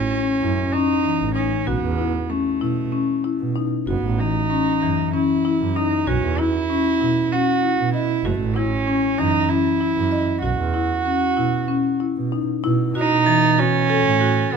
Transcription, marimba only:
0.11 0.33 C#4 medium
0.42 0.64 E4 medium
0.73 0.96 C#4 medium
1.05 1.27 E3 soft
1.36 1.58 D#4 medium
1.67 1.89 F#4 medium
1.99 2.21 E4 medium
2.30 2.52 C#4 medium
2.61 2.83 E4 medium
2.92 3.15 C#4 medium
3.24 3.47 E4 medium
3.56 3.78 D#4 medium
3.87 4.10 F#4 medium
4.19 4.41 E3 medium
4.50 4.73 C#4 medium
4.82 5.04 E3 medium
5.14 5.36 C#4 medium
5.45 5.67 E4 medium
5.76 5.98 D#4 medium
6.07 6.30 F#4 medium
6.38 6.61 E4 medium
6.70 6.92 C#4 medium
7.01 7.23 E4 medium
7.32 7.54 C#4 medium
7.63 7.85 E4 medium
7.94 8.16 D#5 medium
8.25 8.47 F#4 medium
8.56 8.78 E4 medium
8.87 9.09 C#4 medium
9.18 9.40 E3 medium
9.49 9.72 C#4 medium
9.81 10.03 E4 medium
10.11 10.34 D#5 medium
10.43 10.65 F#4 medium
10.74 10.97 E4 medium
11.05 11.28 C#4 medium
11.37 11.60 E4 medium
11.68 11.91 C#4 medium
12.00 12.23 E4 soft
12.32 12.55 D#4 medium
12.64 12.86 E4 medium
12.95 13.18 F#4 medium
13.27 13.49 E3 medium
13.58 13.80 F#4 medium
13.90 14.12 A4 medium
14.21 14.43 F#4 medium
14.52 14.57 A4 medium

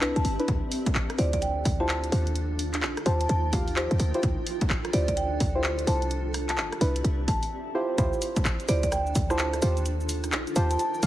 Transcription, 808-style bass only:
0.00 0.12 C2 loud
0.16 0.23 C2 loud
0.25 0.37 G1 loud
0.48 0.61 D2 loud
0.95 1.08 A1 medium
1.19 1.63 D2 medium
1.65 2.10 D2 medium
2.12 2.84 D#2 loud
2.83 2.95 A#1 medium
3.06 3.27 D#2 medium
3.29 3.87 D#2 loud
3.91 3.98 D#2 loud
4.00 4.12 D2 loud
4.23 4.36 D2 loud
4.70 4.83 A1 medium
4.93 5.38 D2 loud
5.40 5.85 D2 medium
5.87 6.59 C2 loud
6.58 6.70 G1 medium
6.81 7.02 C2 medium
7.04 7.27 C2 loud
7.28 7.40 G1 medium
7.98 8.11 D2 loud
8.45 8.58 A1 medium
8.69 9.13 D2 loud
9.15 9.60 D2 medium
9.62 10.34 D#2 loud
10.33 10.45 A#1 medium
10.56 10.77 D#2 medium
11.03 11.07 D#2 medium

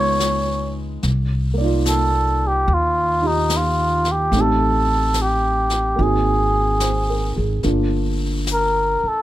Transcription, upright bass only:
0.00 0.99 C#2 medium
1.03 2.64 C2 medium
2.68 4.29 D#2 medium
4.32 5.93 A1 medium
5.99 7.33 G#1 medium
7.37 7.62 G#1 medium
7.64 8.99 G1 medium
9.03 muted upright bass stroke soft

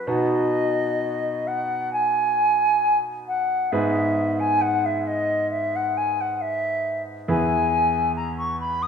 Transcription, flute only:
0.07 1.48 D#5 medium
1.47 1.92 F#5 medium
1.92 2.97 G#5 medium
3.27 3.73 F#5 medium
3.71 4.41 E5 medium
4.39 4.62 G#5 medium
4.61 4.87 F#5 medium
4.85 5.08 E5 medium
5.07 5.49 D#5 medium
5.50 5.77 E5 medium
5.75 5.98 F#5 medium
5.97 6.22 G#5 medium
6.20 6.42 F#5 medium
6.41 7.02 E5 medium
7.29 8.12 G#5 medium
8.16 8.37 A#5 medium
8.38 8.59 C#6 medium
8.60 8.83 B5 medium
8.82 8.88 D#6 medium

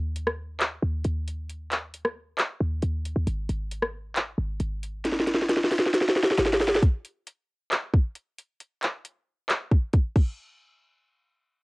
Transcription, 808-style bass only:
0.00 0.79 D#2 loud
0.82 1.04 D#2 loud
1.05 2.34 D#2 loud
2.60 2.82 D#2 loud
2.83 3.15 D#2 loud
3.16 3.27 D#2 loud
3.27 3.48 G#1 loud
3.49 4.35 G#1 loud
4.38 4.59 G#1 loud
4.60 5.90 G#1 loud
6.38 6.81 G#1 loud

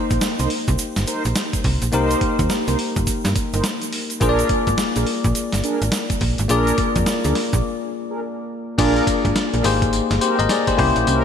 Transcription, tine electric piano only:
0.00 1.88 A#3 medium
0.00 1.89 D#4 medium
0.00 1.89 G4 medium
0.00 1.90 C5 medium
1.92 4.17 A#3 medium
1.92 4.17 D#4 medium
1.92 4.18 G4 medium
1.92 4.18 A#4 medium
4.20 6.45 A#3 medium
4.20 6.46 F4 medium
4.20 6.46 G#4 medium
4.20 4.30 C5 medium
4.29 6.49 D5 medium
6.48 8.74 A#3 medium
6.48 8.74 F4 medium
6.48 8.74 G#4 medium
6.48 8.75 D5 medium
8.78 9.62 A#3 medium
8.78 9.64 D4 medium
8.78 9.64 F4 medium
8.78 9.63 G#4 medium
8.78 9.64 D5 medium
9.63 10.75 A#3 medium
9.63 10.76 D#4 medium
9.63 10.20 G4 medium
9.63 10.20 G#4 medium
9.63 10.20 C5 medium
10.21 10.38 G4 medium
10.21 10.38 C5 medium
10.39 10.49 A#4 medium
10.39 10.49 D#5 medium
10.50 10.67 G#4 medium
10.50 10.67 D5 medium
10.68 10.77 G4 medium
10.68 10.78 C5 medium
10.77 11.24 A#3 medium
10.77 11.24 C#4 medium
10.77 11.24 E4 medium
10.77 11.24 G4 medium
10.77 11.24 C5 medium

